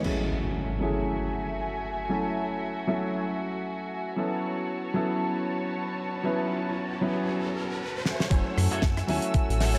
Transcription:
0.02 F#3 A3 C#4 E4 F#4 G#4 E5 G#5, crash, impact
0.80 F#3 A3 C#4 E4 G#4
2.09 F#3 A3 C#4 E4 A4
2.87 F#3 A3 C#4 E4 A4
4.16 F#3 B3 C#4 E4 A4 B4 C#5 A5, riser
4.94 F#3 B3 C#4 E4 A4
6.23 F#3 B3 C#4 E4 B4
7.01 F#3 B3 C#4 E4 B4
8.05 F#4 A4 E5 G#5, snare
8.20 snare
8.30 F#1 F#3 A3 C#4 E4 F#5 G#5 E6, kick, closed hi-hat
8.57 F#2, cross-stick, open hi-hat
8.71 F#2 F#4 G#4 A4 E5, closed hi-hat
8.82 F#2, kick, snare, closed hi-hat
8.97 muted clean electric guitar stroke, cross-stick, closed hi-hat
9.07 D#2 F#3 A3 C#4 E4 G#5, muted clean electric guitar stroke, open hi-hat
9.22 closed hi-hat
9.34 A1, kick, closed hi-hat
9.49 A1, closed hi-hat
9.60 F#4 G#4 A4 E5, snare, open hi-hat
9.75 F#1 C#5, cross-stick, closed hi-hat

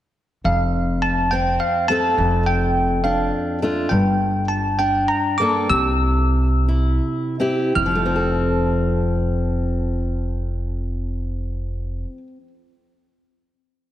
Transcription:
0.44 F1 F2 F5
1.02 A5
1.31 C4 G5
1.60 F5
1.88 A3 C4 A4 A5
2.17 F1 F2
2.46 G5
3.04 D4 F5
3.62 A3 D4 F4
3.89 G1 G2 G5
4.48 A5
4.79 D4 G5
5.08 A#5
5.38 A#3 D4 A4 D6
5.70 C2 C3 E6
6.68 E4
7.40 C4 E4 G4
7.75 F1 F2 F6
7.86 F3
7.95 A3
8.05 C4
8.16 A4

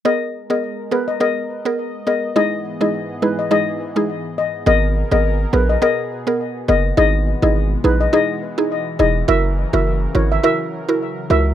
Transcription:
0.05 G#3 B3 G#4 A#4 D#5
0.50 B3 G#4 A#4 D#5
0.91 B3 G#4 A#4 B4
1.08 D#5
1.20 B3 G#4 A#4 D#5
1.65 B3 G#4 A#4
2.07 B3 G#4 A#4 D#5
2.36 G#2 E3 G#3 D#4 E4 G#4 D#5
2.81 G#3 D#4 E4 G#4 D#5
3.22 G#3 D#4 E4 G#4 B4
3.39 D#5
3.51 G#3 D#4 E4 G#4 D#5
3.96 G#3 D#4 E4 G#4
4.38 D#5
4.66 G#1 B2 B3 G#4 A#4 D#5
5.11 G#1 B3 G#4 A#4 D#5
5.53 A#1 B3 G#4 A#4 B4
5.69 D#5
5.82 B3 G#4 A#4 D#5
6.27 B3 G#4 A#4
6.68 F#1 B3 G#4 A#4 D#5
6.97 G#1 E3 G#3 D#4 E4 G#4 D#5
7.42 G#1 D#4 E4 G#4 D#5
7.84 A#1 D#4 E4 G#4 B4
8.01 D#5
8.13 D#4 E4 G#4 D#5
8.58 D#4 E4 G#4
8.99 E1 D#4 E4 G#4 D#5
9.28 F#1 C#3 F#3 E4 F#4 A#4 E5
9.73 F#1 E4 F#4 A#4 E5
10.15 G#1 E4 F#4 A#4 C#5
10.32 E5
10.43 E4 F#4 A#4 E5
10.89 E4 F#4 A#4
11.30 C#2 E4 F#4 A#4 E5

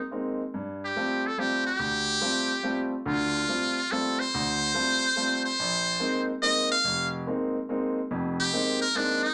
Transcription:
Already playing: D#4
0.11 G#3 A#3 C4 D#4
0.54 G2
0.85 G4
0.96 G3 A3 C4 F4
1.27 A4
1.38 G3 A3 C4 F4 G4
1.67 G4
1.79 D2
2.21 G3 A3 C4 F4
2.63 G3 A3 C4 F4
3.06 D2 D3 F4
3.48 G3 A3 C4 F4
3.92 G3 A3 C4 F4 A4
4.19 C5
4.34 D2
4.74 G3 A3 C4 F4
5.16 G3 A3 C4 F4
5.45 C5
5.59 A#1
6.00 G#3 A#3 C4 D#4
6.43 G#3 A#3 C4 D#4 D#5
6.72 F5
6.85 F1
7.27 G#3 A#3 C4 D#4
7.69 G#3 A#3 C4 D#4
8.11 F1 F2
8.40 G4
8.53 G#3 A#3 C4 D#4
8.82 A#4
8.95 G#3 A#3 C4 D4 D#4
9.23 D#4

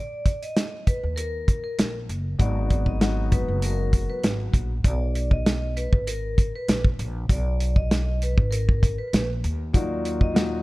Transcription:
Already playing: D5
0.26 kick, closed hi-hat
0.42 D#5, closed hi-hat
0.57 snare, closed hi-hat
0.87 B4, kick, closed hi-hat
1.03 D#2
1.16 A#4, closed hi-hat
1.48 kick, closed hi-hat
1.64 A#4
1.78 A#1, snare, closed hi-hat
2.09 F#1, closed hi-hat
2.39 G#1 F#3 G#3 B3 D#4 F#4 D5, kick, closed hi-hat
2.70 kick, closed hi-hat
2.86 D#5, kick
3.00 F#3 G#3 B3 D#4 F#4, snare, closed hi-hat
3.32 B4, kick, closed hi-hat
3.48 F#1
3.62 A#4, closed hi-hat
3.93 kick, closed hi-hat
4.10 B4
4.23 G#1, snare, closed hi-hat
4.54 A#1, kick, closed hi-hat
4.84 B1 D5, kick, closed hi-hat
5.15 closed hi-hat
5.31 D#5, kick
5.46 snare, closed hi-hat
5.77 B4, closed hi-hat
5.93 G#1, kick
6.07 A#4, closed hi-hat
6.38 kick, closed hi-hat
6.56 B4
6.68 A#1, snare, closed hi-hat
6.84 kick
6.99 A#1, closed hi-hat
7.29 B1 D5, kick, closed hi-hat
7.60 closed hi-hat
7.76 D#5, kick
7.91 snare, closed hi-hat
8.22 B4, closed hi-hat
8.38 G#1, kick
8.51 A#4, closed hi-hat
8.69 kick
8.83 kick, closed hi-hat
8.99 B4
9.13 A#1, snare, closed hi-hat
9.44 D#2, closed hi-hat
9.73 F#3 A#3 D#4 F4 F#4 D5, kick, closed hi-hat
10.05 closed hi-hat
10.21 D#5, kick
10.34 A#2 F#3 D#4 F4 F#4, snare, closed hi-hat

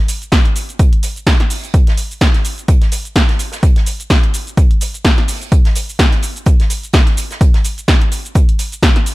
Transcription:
0.08 closed hi-hat, open hi-hat, shaker
0.22 closed hi-hat, shaker
0.32 kick, snare, closed hi-hat, shaker
0.45 closed hi-hat
0.56 closed hi-hat, open hi-hat, shaker
0.69 closed hi-hat, shaker
0.79 kick, closed hi-hat, shaker
0.93 closed hi-hat
1.03 closed hi-hat, open hi-hat, shaker
1.16 closed hi-hat, shaker
1.26 kick, snare, closed hi-hat, shaker
1.40 snare, closed hi-hat
1.50 open hi-hat, shaker
1.64 closed hi-hat, shaker
1.74 kick, closed hi-hat, shaker
1.87 snare, closed hi-hat
1.97 closed hi-hat, open hi-hat, shaker
2.11 shaker
2.21 kick, snare, closed hi-hat, shaker
2.34 snare, closed hi-hat
2.45 closed hi-hat, open hi-hat, shaker
2.58 closed hi-hat, shaker
2.68 kick, closed hi-hat, shaker
2.82 snare, closed hi-hat
2.92 closed hi-hat, open hi-hat, shaker
3.05 closed hi-hat, shaker
3.16 kick, snare, closed hi-hat, shaker
3.29 snare, closed hi-hat
3.39 closed hi-hat, open hi-hat, shaker
3.52 snare, closed hi-hat, shaker
3.63 kick, closed hi-hat, shaker
3.76 snare, closed hi-hat
3.86 closed hi-hat, open hi-hat, shaker
4.00 closed hi-hat, shaker
4.10 kick, snare, closed hi-hat, shaker
4.24 closed hi-hat
4.34 closed hi-hat, open hi-hat, shaker
4.47 closed hi-hat, shaker
4.57 kick, closed hi-hat, shaker
4.71 closed hi-hat
4.81 closed hi-hat, open hi-hat, shaker
4.94 closed hi-hat, shaker
5.04 kick, snare, closed hi-hat, shaker
5.18 snare, closed hi-hat
5.28 open hi-hat, shaker
5.42 closed hi-hat, shaker
5.52 kick, closed hi-hat, shaker
5.65 snare, closed hi-hat
5.76 closed hi-hat, open hi-hat, shaker
5.89 shaker
5.99 kick, snare, closed hi-hat, shaker
6.12 snare, closed hi-hat
6.22 closed hi-hat, open hi-hat, shaker
6.36 closed hi-hat, shaker
6.46 kick, closed hi-hat, shaker
6.60 snare, closed hi-hat
6.70 closed hi-hat, open hi-hat, shaker
6.83 closed hi-hat, shaker
6.93 kick, snare, closed hi-hat, shaker
7.06 snare, closed hi-hat
7.17 closed hi-hat, open hi-hat, shaker
7.31 snare, closed hi-hat, shaker
7.41 kick, closed hi-hat, shaker
7.54 snare, closed hi-hat
7.64 closed hi-hat, open hi-hat, shaker
7.78 closed hi-hat, shaker
7.88 kick, snare, closed hi-hat, shaker
8.02 closed hi-hat
8.11 closed hi-hat, open hi-hat, shaker
8.25 closed hi-hat, shaker
8.35 kick, closed hi-hat, shaker
8.49 closed hi-hat
8.59 closed hi-hat, open hi-hat, shaker
8.72 closed hi-hat, shaker
8.83 kick, snare, closed hi-hat, shaker
8.96 snare, closed hi-hat
9.06 open hi-hat, shaker

